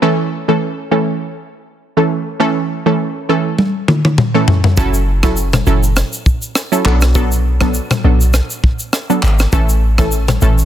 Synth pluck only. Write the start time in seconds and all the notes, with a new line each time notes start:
0.02 E3 A3 C#4 A4
0.48 E3 A3 C#4 A4
0.91 E3 A3 C#4 A4
1.97 E3 A3 C#4 A4
2.40 E3 A3 C#4 A4
2.86 E3 A3 C#4 A4
3.29 E3 A3 C#4 A4
4.34 E3 A3 C#4 A4
4.78 F#3 C#4 E4 A4
5.24 F#3 C#4 E4 A4
5.67 F#3 C#4 E4 A4
6.72 F#3 C#4 E4 A4
6.85 F#3 B3 D4 A4
7.15 F#3 B3 D4 A4
7.61 F#3 B3 D4 A4
8.04 F#3 B3 D4 A4
9.10 F#3 B3 D4 A4
9.53 E3 A3 C#4 A4
9.99 E3 A3 C#4 A4
10.42 E3 A3 C#4 A4